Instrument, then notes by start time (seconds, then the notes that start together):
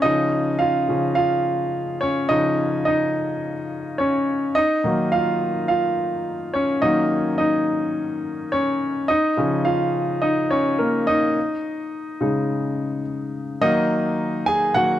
grand piano
0.02 C#3 F3 C#4 D#4 D#5
0.59 F4 F5
0.88 C#3 F3 C#4
1.15 F4 F5
2.01 C#4 C#5
2.29 C#3 F3 C#4 D#4 D#5
2.85 D#4 D#5
3.98 C#4 C#5
4.55 D#4 D#5
4.84 D#3 F#3 A#3
5.12 F4 F5
5.68 F4 F5
6.54 C#4 C#5
6.82 D#3 F#3 A#3 D#4 D#5
7.38 D#4 D#5
8.52 C#4 C#5
9.08 D#4 D#5
9.37 C#3 F3 C#4
9.65 F4 F5
10.22 D#4 D#5
10.51 C#4 C#5
10.79 A#3 A#4
11.07 D#4 D#5
12.21 C#3 G#3 D#4
13.61 D#3 F#3 A#3 D#4 D#5
14.46 G#4 G#5
14.74 D#3 F#3 A#3 F#4 F#5